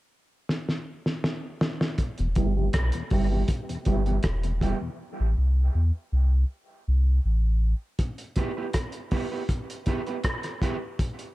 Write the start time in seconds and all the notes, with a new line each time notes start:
0.49 snare
0.69 snare
1.06 snare
1.24 snare
1.61 snare
1.81 snare
1.98 kick, closed hi-hat
2.18 E1 E2 B2, closed hi-hat
2.35 G1 G3 B3 E4 G4, kick, closed hi-hat
2.57 E2 B2 G3 B3 E4 G4
2.73 B1, kick, cross-stick, closed hi-hat
2.92 E2 B2, closed hi-hat
3.10 G1 G3 B3 E4 G4, kick, open hi-hat
3.31 E2 B2 G3 B3 E4 G4
3.48 kick, closed hi-hat
3.69 E2 B2, closed hi-hat
3.85 G1 G3 B3 E4 G4, kick, closed hi-hat
4.06 E2 B2 G3 B3 E4 G4, closed hi-hat
4.23 E1, kick, cross-stick, closed hi-hat
4.43 E2 B2, closed hi-hat
4.61 G3 B3 E4 G4, kick, closed hi-hat
4.81 E2 B2
5.20 A1
5.38 C2
5.75 E2
6.12 C2
6.88 C2
7.25 A1
7.99 kick, closed hi-hat
8.18 closed hi-hat
8.36 B3 E4 G4 B4, kick, closed hi-hat
8.57 B3 E4 G4 B4
8.73 kick, cross-stick, closed hi-hat
8.92 closed hi-hat
9.11 B3 E4 G4 B4, kick, open hi-hat
9.32 B3 E4 G4 B4
9.49 kick, closed hi-hat
9.70 closed hi-hat
9.86 B3 E4 G4 B4, kick, closed hi-hat
10.06 B3 E4 G4 B4, closed hi-hat
10.23 kick, cross-stick, closed hi-hat
10.43 cross-stick, closed hi-hat
10.62 B3 E4 G4 B4, kick, closed hi-hat
10.99 kick, closed hi-hat
11.19 closed hi-hat